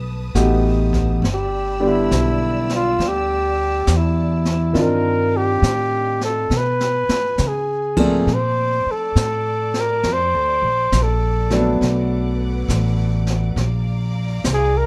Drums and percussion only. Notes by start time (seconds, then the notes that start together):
0.35 snare, hi-hat pedal
0.93 kick, snare
1.24 brush sweep, snare
2.11 snare, hi-hat pedal
2.69 snare
3.00 brush sweep, snare
3.87 snare, hi-hat pedal
4.45 snare
4.75 brush sweep, snare
5.63 snare, hi-hat pedal
6.21 snare
6.51 snare
6.81 snare
7.09 snare
7.38 snare, hi-hat pedal
7.97 kick, crash
8.28 brush sweep, snare
9.16 snare, hi-hat pedal
9.74 snare
10.03 brush sweep, snare
10.92 snare, hi-hat pedal
11.50 snare
11.82 brush sweep, snare
12.69 snare, hi-hat pedal
13.27 snare
13.57 brush sweep, snare
14.44 snare, hi-hat pedal